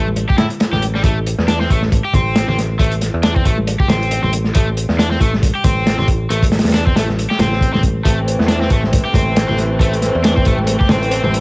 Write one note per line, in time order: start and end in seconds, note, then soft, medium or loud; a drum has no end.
0.00 0.25 A1 medium
0.08 high conga medium
0.16 closed hi-hat medium
0.29 0.37 G4 medium
0.29 kick medium
0.38 0.48 A2 medium
0.38 0.45 E4 medium
0.38 snare loud
0.38 closed hi-hat medium
0.38 high conga medium
0.38 low conga medium
0.50 closed hi-hat soft
0.60 snare medium
0.60 closed hi-hat medium
0.73 1.01 A1 medium
0.73 0.82 G4 medium
0.73 snare soft
0.73 high conga medium
0.73 low conga medium
0.82 closed hi-hat medium
0.95 1.03 G3 medium
0.95 snare soft
1.04 1.34 A1 medium
1.04 1.17 A3 loud
1.04 kick loud
1.04 closed hi-hat medium
1.27 closed hi-hat medium
1.39 1.66 E2 medium
1.39 snare soft
1.48 1.60 D4 medium
1.48 snare loud
1.48 closed hi-hat medium
1.61 1.69 C4 medium
1.61 snare medium
1.70 2.00 A1 medium
1.70 1.81 A3 medium
1.70 kick medium
1.70 closed hi-hat medium
1.82 snare soft
1.82 high conga medium
1.92 kick loud
1.92 closed hi-hat medium
2.05 2.12 G4 medium
2.14 2.44 A1 medium
2.14 2.47 C4 medium
2.14 kick loud
2.14 closed hi-hat medium
2.14 high conga medium
2.14 low conga medium
2.36 snare loud
2.36 closed hi-hat medium
2.48 2.76 A1 medium
2.48 2.56 C4 medium
2.48 snare soft
2.48 low conga medium
2.58 snare soft
2.58 closed hi-hat medium
2.79 3.09 A1 medium
2.79 2.91 A3 medium
2.79 kick loud
2.79 closed hi-hat medium
2.92 closed hi-hat soft
3.01 snare soft
3.01 closed hi-hat medium
3.14 3.42 E2 medium
3.23 3.35 D4 medium
3.23 snare loud
3.23 closed hi-hat medium
3.36 3.44 C4 medium
3.36 kick loud
3.45 3.75 A1 medium
3.45 3.56 A3 medium
3.45 kick loud
3.45 closed hi-hat medium
3.58 high conga medium
3.67 closed hi-hat medium
3.80 3.88 G4 medium
3.80 kick medium
3.88 4.18 A1 medium
3.88 4.22 C4 medium
3.88 snare loud
3.88 closed hi-hat medium
3.88 high conga medium
3.88 low conga medium
4.03 closed hi-hat soft
4.11 closed hi-hat medium
4.23 4.51 A1 medium
4.23 4.31 C4 medium
4.23 high conga medium
4.23 low conga medium
4.33 closed hi-hat medium
4.45 snare soft
4.55 4.85 A1 medium
4.55 4.67 A3 loud
4.55 kick loud
4.55 closed hi-hat medium
4.77 closed hi-hat medium
4.89 5.17 E2 loud
4.89 snare soft
4.99 5.10 D4 medium
4.99 snare loud
4.99 closed hi-hat medium
5.11 5.19 C4 loud
5.11 snare medium
5.20 5.50 A1 medium
5.20 5.31 A3 medium
5.20 kick loud
5.20 closed hi-hat medium
5.34 snare soft
5.34 high conga medium
5.43 kick loud
5.43 closed hi-hat medium
5.55 5.63 G4 medium
5.64 5.94 A1 medium
5.64 5.98 C4 medium
5.64 kick medium
5.64 closed hi-hat medium
5.64 high conga medium
5.64 low conga medium
5.87 snare loud
5.87 closed hi-hat medium
5.99 6.26 A1 medium
5.99 6.07 C4 medium
5.99 snare soft
5.99 low conga medium
6.08 kick medium
6.08 closed hi-hat medium
6.30 6.60 A1 medium
6.30 6.42 A3 loud
6.30 closed hi-hat medium
6.43 kick loud
6.43 closed hi-hat medium
6.52 snare medium
6.52 closed hi-hat medium
6.59 snare medium
6.59 closed hi-hat medium
6.64 6.92 E2 medium
6.64 snare medium
6.64 closed hi-hat medium
6.69 snare medium
6.69 closed hi-hat medium
6.74 6.86 D4 medium
6.74 snare loud
6.74 closed hi-hat medium
6.86 6.94 C4 medium
6.86 kick medium
6.96 7.26 A1 medium
6.96 7.06 A3 medium
6.96 snare loud
6.96 closed hi-hat medium
7.08 snare soft
7.08 high conga medium
7.19 closed hi-hat medium
7.30 7.38 G4 medium
7.30 snare soft
7.39 7.69 A1 loud
7.39 7.72 C4 medium
7.39 snare loud
7.39 closed hi-hat medium
7.39 high conga medium
7.39 low conga medium
7.52 snare soft
7.61 kick medium
7.61 closed hi-hat medium
7.73 8.02 A1 medium
7.73 7.81 C4 medium
7.73 snare soft
7.73 high conga medium
7.73 low conga medium
7.83 kick medium
7.83 closed hi-hat medium
8.05 8.35 A1 medium
8.05 11.40 E3 medium
8.05 8.17 A3 loud
8.05 11.40 A3 medium
8.05 11.40 C4 medium
8.05 kick loud
8.05 closed hi-hat medium
8.28 closed hi-hat medium
8.39 8.67 E2 medium
8.39 snare soft
8.48 8.61 D4 medium
8.48 snare loud
8.48 closed hi-hat medium
8.61 8.69 C4 medium
8.61 snare medium
8.70 9.01 A1 medium
8.70 8.81 A3 medium
8.70 kick loud
8.70 closed hi-hat medium
8.84 snare soft
8.84 high conga medium
8.93 kick loud
8.93 closed hi-hat medium
9.05 9.13 G4 medium
9.14 9.44 A1 medium
9.14 9.47 C4 medium
9.14 kick medium
9.14 closed hi-hat medium
9.14 high conga medium
9.14 low conga medium
9.36 snare loud
9.36 closed hi-hat medium
9.49 9.77 A1 medium
9.49 9.57 C4 medium
9.49 snare soft
9.49 low conga medium
9.58 snare soft
9.58 closed hi-hat medium
9.79 10.10 A1 loud
9.79 9.92 A3 loud
9.79 kick loud
9.79 closed hi-hat medium
9.93 closed hi-hat soft
10.02 snare soft
10.02 closed hi-hat medium
10.15 10.43 E2 loud
10.24 10.36 D4 medium
10.24 snare loud
10.24 closed hi-hat medium
10.36 10.44 C4 loud
10.36 kick medium
10.45 10.76 A1 medium
10.45 10.57 A3 medium
10.45 kick loud
10.45 closed hi-hat medium
10.58 high conga medium
10.67 closed hi-hat medium
10.80 10.88 G4 medium
10.80 kick medium
10.89 11.20 A1 medium
10.89 11.23 C4 medium
10.89 snare loud
10.89 closed hi-hat medium
10.89 high conga medium
10.89 low conga medium
11.03 closed hi-hat soft
11.11 closed hi-hat medium
11.24 11.40 A1 medium
11.24 11.32 C4 loud
11.24 high conga medium
11.24 low conga medium
11.34 closed hi-hat medium